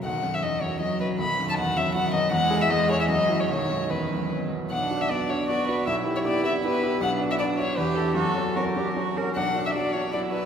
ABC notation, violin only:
X:1
M:3/4
L:1/16
Q:1/4=156
K:B
V:1 name="Violin"
f3 e d2 c2 d2 B2 | b3 =a f2 e2 f2 d2 | f3 e d2 c e d3 c | c4 B4 z4 |
[K:Bm] f3 e d2 c2 d2 B2 | e3 c d2 e2 B4 | f3 e d2 c2 B2 A2 | A4 ^A6 z2 |
f3 e d2 c2 d2 B2 |]